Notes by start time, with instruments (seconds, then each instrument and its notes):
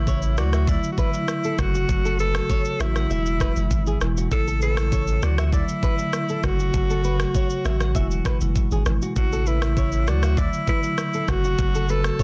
Already playing: sub bass A1, marimba C#3 E3 A3 E4, alto saxophone E4
0.07 nylon-string guitar C#5, kick, shaker
0.22 shaker
0.37 sub bass D2, marimba D3 F#3 A3 E4, alto saxophone F#4, nylon-string guitar D5, cross-stick, shaker
0.53 nylon-string guitar E5, cross-stick, shaker
0.67 marimba D3 F#3 A3 E4, alto saxophone E4, nylon-string guitar D5, kick, shaker
0.84 shaker
0.92 alto saxophone F#4
0.98 alto saxophone E4, nylon-string guitar B4, kick, shaker
1.14 marimba D3 F#3 A3 E4, shaker
1.28 cross-stick, shaker
1.44 nylon-string guitar A4, shaker
1.58 sub bass F#1, marimba C#3 F#3 A3 F#4, alto saxophone F#4, kick, cross-stick, shaker
1.75 nylon-string guitar F#4, shaker
1.89 sub bass F#1, marimba C#3 F#3 A3 F#4, kick, shaker
2.05 nylon-string guitar A4, shaker
2.19 alto saxophone A4, nylon-string guitar B4, shaker
2.35 marimba C#3 F#3 A3 F#4, cross-stick, shaker
2.50 nylon-string guitar C#5, kick, shaker
2.65 shaker
2.80 sub bass A1, marimba C#3 F#3 A3 F#4, alto saxophone E4, nylon-string guitar E5, cross-stick, shaker
2.96 nylon-string guitar F#5, cross-stick, shaker
3.10 sub bass E1, marimba B2 E3 G#3 E4, nylon-string guitar E5, shaker
3.26 shaker
3.40 nylon-string guitar B4, kick, cross-stick, shaker
3.56 sub bass F#1, marimba B2 E3 G#3 E4, shaker
3.71 sub bass G#1, kick, shaker
3.87 nylon-string guitar G#4, shaker
4.01 sub bass E1, marimba B2 E3 G#3 E4, cross-stick, shaker
4.17 nylon-string guitar F#4, shaker
4.31 sub bass A1, marimba C#3 E3 A3 E4, alto saxophone A4, kick, shaker
4.48 nylon-string guitar A4, shaker
4.62 alto saxophone A4, nylon-string guitar B4, shaker
4.77 marimba C#3 E3 A3 E4, cross-stick, shaker
4.92 nylon-string guitar C#5, kick, shaker
5.07 shaker
5.22 sub bass D2, marimba D3 F#3 A3 E4, alto saxophone F#4, nylon-string guitar D5, cross-stick, shaker
5.38 nylon-string guitar E5, cross-stick, shaker
5.46 alto saxophone F#4
5.52 marimba D3 F#3 A3 E4, alto saxophone E4, nylon-string guitar D5, kick, shaker
5.69 shaker
5.83 nylon-string guitar B4, kick, shaker
5.99 marimba D3 F#3 A3 E4, shaker
6.13 cross-stick, shaker
6.29 nylon-string guitar A4, shaker
6.43 sub bass F#1, marimba C#3 F#3 A3 F#4, alto saxophone F#4, kick, cross-stick, shaker
6.60 nylon-string guitar F#4, shaker
6.74 sub bass F#1, marimba C#3 F#3 A3 F#4, kick, shaker
6.90 nylon-string guitar A4, shaker
7.04 nylon-string guitar B4, shaker
7.20 marimba C#3 F#3 A3 F#4, cross-stick, shaker
7.35 nylon-string guitar C#5, kick, shaker
7.50 shaker
7.65 sub bass A1, marimba C#3 F#3 A3 F#4, nylon-string guitar E5, cross-stick, shaker
7.81 nylon-string guitar F#5, cross-stick, shaker
7.95 sub bass E1, marimba B2 E3 G#3 E4, nylon-string guitar E5, kick, shaker
8.11 shaker
8.25 nylon-string guitar B4, kick, cross-stick, shaker
8.41 sub bass F#1, marimba B2 E3 G#3 E4, shaker
8.56 kick, shaker
8.71 sub bass G#1, nylon-string guitar G#4, shaker
8.86 sub bass G#1, marimba B2 E3 G#3 E4, cross-stick, shaker
9.02 nylon-string guitar F#4, shaker
9.16 sub bass A1, marimba C#3 E3 A3 E4, alto saxophone F#4, kick, shaker
9.33 nylon-string guitar A4, shaker
9.46 alto saxophone E4, nylon-string guitar B4, shaker
9.62 marimba C#3 E3 A3 E4, cross-stick, shaker
9.77 nylon-string guitar C#5, kick, shaker
9.92 shaker
10.07 sub bass D2, marimba D3 F#3 A3 E4, alto saxophone F#4, nylon-string guitar D5, cross-stick, shaker
10.23 nylon-string guitar E5, cross-stick, shaker
10.37 marimba D3 F#3 A3 E4, alto saxophone E4, nylon-string guitar D5, kick, shaker
10.53 shaker
10.68 alto saxophone E4, nylon-string guitar B4, kick, shaker
10.83 marimba D3 F#3 A3 E4, shaker
10.98 cross-stick, shaker
11.14 nylon-string guitar A4, shaker
11.28 sub bass F#1, marimba C#3 F#3 A3 F#4, alto saxophone F#4, kick, cross-stick, shaker
11.44 nylon-string guitar F#4, shaker
11.58 sub bass F#1, marimba C#3 F#3 A3 F#4, kick, shaker
11.75 nylon-string guitar A4, shaker
11.89 alto saxophone A4, nylon-string guitar B4, shaker
12.04 marimba C#3 F#3 A3 F#4, cross-stick, shaker
12.19 nylon-string guitar C#5, kick, shaker